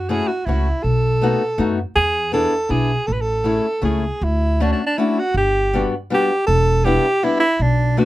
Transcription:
Already playing: upright bass F#2, alto saxophone F#4
0.09 steel-string acoustic guitar A3 C#4 E4 F#4, alto saxophone G#4
0.28 alto saxophone F#4
0.45 upright bass C#2, steel-string acoustic guitar A3 C#4 E4 F#4, alto saxophone E4
0.83 upright bass B1, alto saxophone A4
1.22 steel-string acoustic guitar A3 B3 D#4 F#4
1.58 upright bass F#2, steel-string acoustic guitar A3 B3 D#4 F#4
1.96 upright bass E2, alto saxophone G#4
2.32 steel-string acoustic guitar B3 D4 E4 G#4, alto saxophone A4
2.69 upright bass B1, steel-string acoustic guitar B3 D4 E4 G#4, alto saxophone G#4
3.07 upright bass A1, alto saxophone A4
3.13 alto saxophone B4
3.21 alto saxophone A4
3.44 steel-string acoustic guitar A3 C#4 E4 G#4
3.82 upright bass C#2, steel-string acoustic guitar A3 C#4 E4 G#4, alto saxophone G#4
4.21 upright bass D2, alto saxophone E4
4.60 steel-string acoustic guitar A3 C#4 D4 F#4, alto saxophone D4
4.72 alto saxophone D4
4.86 alto saxophone D4
4.98 steel-string acoustic guitar A3 C#4 D4 F#4, alto saxophone E4
5.19 alto saxophone F#4
5.34 upright bass G1, alto saxophone G4
5.74 steel-string acoustic guitar G3 B3 D4 F#4
6.10 steel-string acoustic guitar G3 B3 D4 F#4, alto saxophone G4
6.47 upright bass E1, alto saxophone A4
6.84 steel-string acoustic guitar G3 B3 D4 E4, alto saxophone G4
7.23 steel-string acoustic guitar G3 B3 D4 E4, alto saxophone E4
7.40 alto saxophone E4
7.60 upright bass B1, alto saxophone D4
7.97 steel-string acoustic guitar A3 B3 D4 F#4, alto saxophone F#4

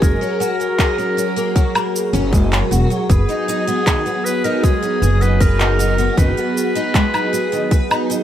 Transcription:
Already playing: analog synth pad F#3 F#4 G#4 A#4
0.02 upright bass F#1, twelve-string acoustic guitar G#3, clarinet A#4, kick, cabasa
0.21 twelve-string acoustic guitar C#4, cabasa
0.40 twelve-string acoustic guitar F#4, cabasa
0.60 twelve-string acoustic guitar F#3, cabasa
0.79 twelve-string acoustic guitar G#4, kick, clap, cabasa
0.98 twelve-string acoustic guitar C#4, cabasa
1.17 twelve-string acoustic guitar C#4, cabasa
1.36 twelve-string acoustic guitar A#3, cabasa
1.56 twelve-string acoustic guitar F#3, kick, cabasa
1.75 twelve-string acoustic guitar A#3, cabasa, low woodblock
1.96 cabasa
2.13 upright bass F#1, twelve-string acoustic guitar C#4, cabasa
2.33 twelve-string acoustic guitar G#3, kick, cabasa
2.52 twelve-string acoustic guitar C#4, clap, cabasa
2.71 upright bass E1, twelve-string acoustic guitar F#4, cabasa
2.90 twelve-string acoustic guitar F#3, cabasa
3.09 upright bass F#1, analog synth pad B3 F#4 G#4, clarinet G#4, twelve-string acoustic guitar B4, kick, cabasa
3.29 twelve-string acoustic guitar D#4, cabasa
3.48 twelve-string acoustic guitar D#4, cabasa
3.67 twelve-string acoustic guitar B3, cabasa
3.87 twelve-string acoustic guitar D#3, kick, clap, cabasa
4.06 twelve-string acoustic guitar B3, cabasa
4.25 clarinet B4, cabasa
4.44 twelve-string acoustic guitar D#4, clarinet A#4, cabasa
4.63 twelve-string acoustic guitar G#3, clarinet G#4, kick, cabasa
4.83 twelve-string acoustic guitar D#4, cabasa
5.02 upright bass F#1, twelve-string acoustic guitar G#4, cabasa
5.21 twelve-string acoustic guitar D#3, clarinet B4, cabasa
5.40 clarinet A#4, twelve-string acoustic guitar B4, kick, cabasa
5.60 twelve-string acoustic guitar D#4, clap, cabasa
5.79 twelve-string acoustic guitar D#4, cabasa
5.98 twelve-string acoustic guitar B3, cabasa
6.17 upright bass F#1, twelve-string acoustic guitar D#3, clarinet B4, kick, cabasa
6.37 twelve-string acoustic guitar B3, cabasa
6.57 cabasa
6.75 twelve-string acoustic guitar D#4, cabasa
6.94 twelve-string acoustic guitar G#3, kick, clap, cabasa
7.14 twelve-string acoustic guitar D#4, cabasa, low woodblock
7.33 twelve-string acoustic guitar G#4, cabasa
7.52 twelve-string acoustic guitar D#3, cabasa
7.71 twelve-string acoustic guitar B4, kick, cabasa
7.91 twelve-string acoustic guitar D#4, cabasa, low woodblock
8.10 twelve-string acoustic guitar D#3, cabasa

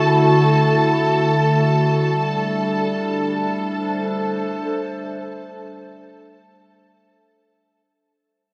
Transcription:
Already playing: ambient pad D3 A3 E4 F#4, harmonium A3, violin section A4 A5
2.00 ambient pad G3
2.19 ambient pad D4 A4
3.57 ambient pad C5

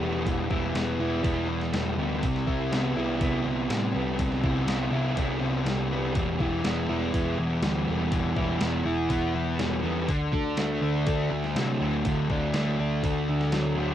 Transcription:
Already playing: distorted electric guitar E3 G3 E4
0.00 picked electric bass E1, distorted electric guitar B3
0.26 picked electric bass E1, distorted electric guitar E3, kick, open hi-hat
0.50 picked electric bass E1, distorted electric guitar E4, kick
0.74 picked electric bass E1, distorted electric guitar B3, snare, open hi-hat
0.99 picked electric bass E1, distorted electric guitar E4
1.24 picked electric bass E1, distorted electric guitar B3, kick, open hi-hat
1.49 distorted electric guitar E3
1.61 snare
1.73 picked electric bass E1, distorted electric guitar G3, snare, open hi-hat
1.98 picked electric bass D2, distorted electric guitar B3
2.22 picked electric bass C2, distorted electric guitar C3, kick, open hi-hat
2.36 snare
2.46 picked electric bass C2, distorted electric guitar E4, kick
2.71 picked electric bass C2, distorted electric guitar B3, snare, open hi-hat
2.96 picked electric bass C2, distorted electric guitar E4
3.20 picked electric bass C2, distorted electric guitar B3, kick, open hi-hat
3.45 picked electric bass C2, distorted electric guitar C3
3.70 picked electric bass A2, distorted electric guitar G3, snare, open hi-hat
3.94 picked electric bass C2, distorted electric guitar B3
4.19 picked electric bass C2, distorted electric guitar C3, kick, open hi-hat
4.32 snare
4.43 picked electric bass C2, distorted electric guitar E4, kick
4.67 picked electric bass C2, distorted electric guitar B3, snare, open hi-hat
4.91 picked electric bass C2, distorted electric guitar E4
5.16 picked electric bass C2, distorted electric guitar B3, kick, open hi-hat
5.40 distorted electric guitar C3
5.65 picked electric bass C2, distorted electric guitar G3, snare, open hi-hat
5.91 picked electric bass C2, distorted electric guitar B3
6.15 picked electric bass E1, distorted electric guitar E3, kick, open hi-hat
6.40 picked electric bass E1, distorted electric guitar E4, kick
6.64 picked electric bass E1, distorted electric guitar B3, snare, open hi-hat
6.89 picked electric bass E1, distorted electric guitar E4
7.13 picked electric bass E1, distorted electric guitar B3, kick, open hi-hat
7.38 picked electric bass E1, distorted electric guitar E3
7.62 picked electric bass D2, distorted electric guitar G3, snare, open hi-hat
7.87 picked electric bass E1, distorted electric guitar B3
8.11 picked electric bass E1, distorted electric guitar E3, kick, open hi-hat
8.36 picked electric bass E1, distorted electric guitar E4, kick
8.61 picked electric bass E1, distorted electric guitar B3, snare, open hi-hat
8.85 picked electric bass E1, distorted electric guitar E4
9.10 picked electric bass E1, distorted electric guitar B3, kick, open hi-hat
9.34 distorted electric guitar E3
9.59 picked electric bass E1, distorted electric guitar G3, snare, open hi-hat
9.83 picked electric bass E2, distorted electric guitar B3
10.08 picked electric bass D2, distorted electric guitar D3, kick, open hi-hat
10.32 picked electric bass D2, distorted electric guitar D4, kick
10.57 picked electric bass D2, distorted electric guitar A3, snare, open hi-hat
10.82 picked electric bass D2, distorted electric guitar D4
11.06 picked electric bass D2, distorted electric guitar A3, kick, open hi-hat
11.31 picked electric bass D2, distorted electric guitar D3
11.44 snare
11.55 picked electric bass C3, distorted electric guitar F#3, snare, open hi-hat
11.80 picked electric bass D2, distorted electric guitar A3
12.05 picked electric bass D2, distorted electric guitar D3, kick, open hi-hat
12.29 picked electric bass D2, distorted electric guitar D4, kick
12.54 picked electric bass D2, distorted electric guitar A3, snare, open hi-hat
12.79 picked electric bass D2, distorted electric guitar D4
13.03 picked electric bass D2, distorted electric guitar A3, kick, open hi-hat
13.29 distorted electric guitar D3
13.41 snare
13.52 picked electric bass D2, distorted electric guitar F#3, snare, open hi-hat
13.76 picked electric bass D2, distorted electric guitar A3

